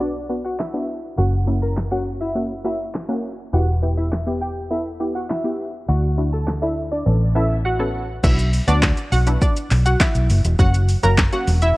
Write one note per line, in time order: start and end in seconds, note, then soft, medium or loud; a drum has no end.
0.00 1.14 B1 medium
0.00 0.18 B3 medium
0.00 0.18 D4 medium
0.00 0.13 D4 medium
0.00 0.18 F#4 medium
0.00 0.12 D5 medium
0.29 0.56 B3 medium
0.29 0.56 D4 medium
0.29 0.56 F#4 medium
0.45 0.57 F#4 medium
0.45 0.57 F#5 medium
0.59 1.01 E4 medium
0.59 1.01 E5 medium
0.59 snare medium
0.59 clap loud
0.74 1.00 B3 medium
0.74 1.00 D4 medium
0.74 1.00 F#4 medium
1.17 3.49 F#1 medium
1.17 1.35 A#3 medium
1.17 1.36 C#4 medium
1.17 1.36 F#4 medium
1.17 1.31 F#4 medium
1.17 1.30 F#5 medium
1.47 1.74 A#3 medium
1.47 1.74 C#4 medium
1.47 1.74 E4 medium
1.62 1.75 A#4 medium
1.62 1.74 A#5 medium
1.77 snare medium
1.77 clap loud
1.91 2.18 A#3 medium
1.91 2.18 C#4 medium
1.91 2.18 F#4 medium
1.91 2.04 F#4 medium
1.91 2.04 F#5 medium
2.21 2.33 E4 medium
2.21 2.33 E5 medium
2.35 2.53 A#3 medium
2.35 2.53 C#4 medium
2.35 2.53 F#4 medium
2.64 2.91 A#3 medium
2.64 2.91 C#4 medium
2.64 2.90 E4 medium
2.64 2.91 F#4 medium
2.64 2.89 E5 medium
2.95 snare medium
2.95 clap loud
3.09 3.35 A#3 medium
3.09 3.35 C#4 medium
3.09 3.36 F#4 loud
3.53 5.85 E1 medium
3.53 3.71 B3 medium
3.53 3.71 E4 medium
3.53 3.66 F#4 medium
3.53 3.71 G4 medium
3.53 3.65 F#5 loud
3.82 4.09 B3 medium
3.82 4.09 E4 medium
3.82 4.09 G4 medium
3.97 4.22 E4 medium
3.97 4.21 E5 medium
4.12 snare medium
4.12 clap loud
4.26 4.53 B3 medium
4.26 4.53 E4 medium
4.26 4.53 G4 medium
4.41 4.54 G4 medium
4.41 4.54 G5 medium
4.70 4.88 B3 medium
4.70 4.88 E4 medium
4.70 4.83 E4 medium
4.70 4.89 A4 medium
4.70 4.83 E5 medium
5.00 5.27 B3 medium
5.00 5.27 E4 medium
5.00 5.27 G4 medium
5.15 5.28 F#4 medium
5.15 5.27 F#5 medium
5.30 5.72 E4 medium
5.30 5.71 E5 medium
5.30 snare medium
5.30 clap loud
5.44 5.71 B3 medium
5.44 5.71 E4 medium
5.44 5.71 G4 medium
5.88 7.02 D2 medium
5.88 6.06 D4 medium
5.88 6.06 E4 medium
5.88 6.06 F#4 medium
5.88 6.01 F#4 medium
5.88 6.01 F#5 loud
6.18 6.44 D4 medium
6.18 6.44 E4 medium
6.18 6.44 F#4 medium
6.33 6.45 A4 medium
6.33 6.45 A5 medium
6.48 snare medium
6.48 clap loud
6.62 6.88 D4 medium
6.62 6.88 E4 medium
6.62 6.75 E4 medium
6.62 6.89 A4 medium
6.62 6.74 E5 medium
6.92 7.04 D4 medium
6.92 7.04 D5 medium
7.06 8.20 A1 medium
7.06 7.24 B3 medium
7.06 7.24 C#4 medium
7.06 7.24 A4 medium
7.35 7.62 B3 medium
7.35 7.62 C#4 medium
7.35 7.60 E4 medium
7.35 7.62 A4 medium
7.35 7.60 E5 medium
7.65 8.07 F#4 medium
7.65 8.07 F#5 medium
7.79 8.06 B3 medium
7.79 8.06 C#4 medium
7.79 8.06 A4 medium
8.23 8.59 B1 loud
8.23 8.50 F#3 medium
8.23 8.50 B3 medium
8.23 8.50 D4 medium
8.23 8.36 E4 medium
8.23 8.50 F#4 medium
8.23 8.36 E5 medium
8.23 kick loud
8.23 crash loud
8.23 shaker medium
8.39 closed hi-hat medium
8.39 shaker medium
8.53 open hi-hat medium
8.53 shaker medium
8.68 8.91 D2 loud
8.68 9.03 F#3 medium
8.68 9.03 B3 medium
8.68 9.03 D4 medium
8.68 8.93 D4 medium
8.68 9.03 F#4 medium
8.68 8.92 D5 medium
8.68 closed hi-hat medium
8.68 shaker medium
8.83 kick loud
8.83 snare loud
8.83 clap loud
8.83 shaker medium
8.97 closed hi-hat soft
8.97 shaker soft
9.12 9.35 B1 medium
9.12 9.25 F#4 medium
9.12 9.24 F#5 medium
9.12 open hi-hat medium
9.12 shaker medium
9.27 9.97 F#3 medium
9.27 9.97 B3 medium
9.27 9.97 D4 medium
9.27 9.97 E4 medium
9.27 closed hi-hat medium
9.27 shaker medium
9.41 9.54 D4 medium
9.41 9.54 D5 medium
9.41 kick loud
9.41 shaker medium
9.56 closed hi-hat medium
9.56 shaker medium
9.71 9.94 B1 loud
9.71 clap medium
9.71 open hi-hat medium
9.71 shaker medium
9.86 9.98 F#4 medium
9.86 9.98 F#5 medium
9.86 closed hi-hat medium
9.86 shaker medium
10.00 10.42 E4 medium
10.00 10.42 E5 medium
10.00 kick loud
10.00 snare loud
10.00 clap loud
10.00 shaker medium
10.15 10.27 B1 medium
10.15 closed hi-hat medium
10.15 shaker medium
10.30 10.41 F#1 loud
10.30 open hi-hat loud
10.30 shaker medium
10.45 10.56 E1 loud
10.45 closed hi-hat medium
10.45 shaker medium
10.59 10.94 F#1 loud
10.59 10.85 F#3 medium
10.59 10.86 A#3 medium
10.59 10.86 C#4 medium
10.59 10.86 F#4 medium
10.59 10.72 F#4 medium
10.59 10.71 F#5 loud
10.59 kick loud
10.59 shaker medium
10.74 closed hi-hat medium
10.74 shaker medium
10.89 open hi-hat medium
10.89 shaker medium
11.03 11.27 F#1 medium
11.03 11.21 F#3 medium
11.03 11.21 A#3 medium
11.03 11.21 C#4 medium
11.03 11.21 F#4 medium
11.03 11.16 A#4 medium
11.03 11.15 A#5 medium
11.03 closed hi-hat medium
11.03 shaker medium
11.18 kick loud
11.18 snare loud
11.18 clap loud
11.18 shaker medium
11.33 11.77 F#3 medium
11.33 11.77 A#3 medium
11.33 11.77 C#4 medium
11.33 11.77 F#4 medium
11.33 11.45 F#4 medium
11.33 11.45 F#5 medium
11.33 closed hi-hat medium
11.33 shaker medium
11.48 11.71 E1 medium
11.48 open hi-hat medium
11.48 shaker medium
11.62 11.75 E4 medium
11.62 11.74 E5 medium
11.62 closed hi-hat medium
11.62 shaker medium